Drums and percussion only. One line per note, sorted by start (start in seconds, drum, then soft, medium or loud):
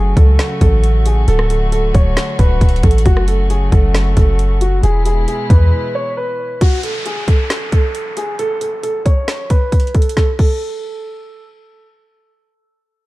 0.17 kick loud
0.17 closed hi-hat medium
0.39 snare loud
0.39 closed hi-hat medium
0.61 kick loud
0.61 closed hi-hat medium
0.84 closed hi-hat medium
1.06 closed hi-hat medium
1.28 closed hi-hat medium
1.39 cross-stick loud
1.50 closed hi-hat medium
1.72 closed hi-hat medium
1.95 kick loud
1.95 closed hi-hat medium
2.17 snare loud
2.17 closed hi-hat medium
2.39 kick medium
2.39 closed hi-hat medium
2.61 kick loud
2.61 closed hi-hat medium
2.69 closed hi-hat medium
2.76 closed hi-hat soft
2.83 kick loud
2.83 closed hi-hat medium
2.83 open hi-hat medium
2.91 closed hi-hat medium
2.98 closed hi-hat medium
3.06 kick loud
3.06 closed hi-hat medium
3.17 cross-stick loud
3.28 closed hi-hat medium
3.50 closed hi-hat medium
3.72 kick loud
3.72 closed hi-hat medium
3.95 snare loud
3.95 closed hi-hat medium
4.17 kick loud
4.17 closed hi-hat medium
4.39 closed hi-hat medium
4.61 closed hi-hat medium
4.83 closed hi-hat medium
5.06 closed hi-hat medium
5.28 closed hi-hat medium
5.50 kick loud
5.50 closed hi-hat medium
6.61 kick loud
6.61 closed hi-hat medium
6.61 crash medium
6.83 closed hi-hat medium
7.06 closed hi-hat medium
7.28 kick loud
7.28 closed hi-hat medium
7.50 snare loud
7.50 closed hi-hat medium
7.72 kick medium
7.72 closed hi-hat medium
7.95 closed hi-hat medium
8.17 closed hi-hat medium
8.39 closed hi-hat medium
8.61 closed hi-hat medium
8.83 closed hi-hat medium
9.06 kick medium
9.06 closed hi-hat medium
9.28 snare loud
9.28 closed hi-hat medium
9.50 kick medium
9.50 closed hi-hat medium
9.72 kick medium
9.72 closed hi-hat medium
9.80 closed hi-hat medium
9.87 closed hi-hat soft
9.95 kick loud
9.95 closed hi-hat soft
10.02 closed hi-hat medium
10.09 closed hi-hat medium
10.17 kick loud
10.17 snare medium
10.39 kick loud
10.39 crash medium